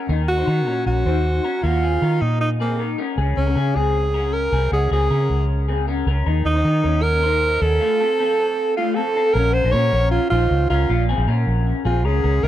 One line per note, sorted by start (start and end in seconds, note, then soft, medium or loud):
0.09 0.42 D#2 medium
0.09 0.37 D#4 medium
0.09 0.36 A#4 medium
0.28 0.82 F#4 loud
0.38 0.47 D#4 medium
0.38 0.47 C5 medium
0.47 0.67 D#3 loud
0.47 0.67 D#4 medium
0.47 0.66 A#4 medium
0.67 0.83 A#2 medium
0.67 1.04 C#4 medium
0.67 1.03 A#4 medium
0.86 1.03 A#1 medium
0.86 1.65 F#4 loud
1.06 1.38 D#2 medium
1.06 1.42 D#4 medium
1.06 1.42 C5 medium
1.44 1.64 C#4 medium
1.44 1.64 A#4 medium
1.63 1.96 D#2 medium
1.63 1.83 A#3 medium
1.63 2.23 F4 loud
1.63 1.83 F#4 medium
1.83 2.03 C4 medium
1.83 2.02 G#4 medium
2.02 2.18 D#3 loud
2.02 2.57 D#4 medium
2.02 2.57 A#4 medium
2.21 2.95 A#2 medium
2.21 2.40 D#4 medium
2.41 2.49 D#4 medium
2.60 2.96 A#3 medium
2.60 2.80 C4 medium
2.60 2.79 G#4 medium
2.79 2.99 D#4 medium
2.79 2.97 A#4 medium
2.98 3.18 C#4 medium
2.98 3.17 A#4 medium
3.18 3.34 C#2 loud
3.18 3.46 C#4 medium
3.18 3.45 G#4 medium
3.37 3.53 C#2 loud
3.37 3.78 C#4 medium
3.47 3.56 C#4 medium
3.47 3.56 A#4 medium
3.56 3.73 C#3 medium
3.56 3.76 C#4 medium
3.56 3.74 G#4 medium
3.75 4.49 C#2 medium
3.75 4.12 C4 medium
3.75 4.12 G#4 medium
3.75 4.35 G#4 medium
4.14 4.51 C#4 medium
4.14 4.50 A#4 medium
4.34 4.72 A#4 medium
4.52 4.69 C2 loud
4.52 4.72 C4 medium
4.52 4.72 G#4 medium
4.72 4.88 C#2 medium
4.72 4.92 C#4 medium
4.72 4.91 F#4 medium
4.72 4.91 G#4 loud
4.91 5.08 C#2 medium
4.91 5.11 C4 medium
4.91 5.10 G#4 medium
4.91 5.46 G#4 medium
5.11 5.27 C#3 loud
5.11 5.65 C#4 medium
5.11 5.65 A#4 medium
5.30 6.03 C#2 medium
5.68 5.88 C4 medium
5.68 5.87 G#4 medium
5.88 6.07 C#4 medium
5.88 6.06 A#4 medium
6.07 6.23 C#2 loud
6.07 6.27 C#4 medium
6.07 6.25 A#4 medium
6.26 6.43 D#2 loud
6.26 6.54 D#4 medium
6.26 6.54 A#4 medium
6.45 6.62 D#2 loud
6.45 7.04 D#4 loud
6.55 6.64 D#4 medium
6.55 6.64 C5 medium
6.65 6.81 D#3 loud
6.65 6.85 D#4 medium
6.65 6.83 A#4 medium
6.84 7.58 D#2 medium
6.84 7.21 C#4 medium
6.84 7.20 A#4 medium
7.03 7.63 A#4 loud
7.23 7.60 D#4 medium
7.23 7.59 C5 medium
7.61 7.78 D#2 medium
7.61 7.81 C#4 medium
7.61 8.77 A4 loud
7.61 7.81 A#4 medium
7.80 8.00 A3 medium
7.80 8.00 F4 medium
8.00 8.19 C4 medium
8.00 8.18 A4 medium
8.19 8.74 C4 medium
8.19 8.74 A4 medium
8.77 8.97 A3 medium
8.77 8.96 F4 medium
8.77 8.97 F4 medium
8.95 9.15 C4 medium
8.95 9.35 A4 loud
8.95 9.15 A4 medium
9.16 9.35 C4 medium
9.16 9.35 A4 medium
9.34 9.60 A#1 loud
9.34 9.63 C#4 medium
9.34 9.55 A#4 loud
9.34 9.62 A#4 medium
9.53 9.74 C5 loud
9.64 9.72 A#1 medium
9.64 9.74 D#4 medium
9.64 9.73 C5 medium
9.72 9.90 A#2 loud
9.72 9.93 C#4 medium
9.72 9.92 A#4 medium
9.72 10.10 C#5 loud
9.93 10.17 A#1 medium
9.93 10.30 C#4 medium
9.93 10.29 A#4 medium
10.11 10.29 F4 loud
10.30 10.48 A#1 loud
10.30 10.68 D#4 medium
10.30 10.67 F4 medium
10.30 10.68 C5 medium
10.51 10.67 C#2 medium
10.70 10.86 C#2 medium
10.70 10.90 C#4 medium
10.70 11.06 F4 medium
10.70 10.89 A#4 medium
10.89 11.14 A#1 medium
10.89 11.09 A#3 medium
10.89 11.09 F4 loud
11.09 11.28 C4 medium
11.09 11.27 G#4 medium
11.18 11.26 A#1 loud
11.28 11.44 A#2 loud
11.28 11.82 C#4 medium
11.28 11.82 A#4 medium
11.47 11.72 A#1 medium
11.85 12.05 A#1 loud
11.85 12.05 C4 medium
11.85 12.07 F4 medium
11.85 12.04 G#4 medium
12.05 12.21 C#2 medium
12.05 12.24 C#4 medium
12.05 12.45 G#4 medium
12.05 12.23 A#4 medium
12.24 12.40 C#2 medium
12.24 12.44 C#4 medium
12.24 12.42 A#4 medium
12.43 12.48 C2 loud
12.43 12.48 D#4 medium
12.43 12.48 A#4 loud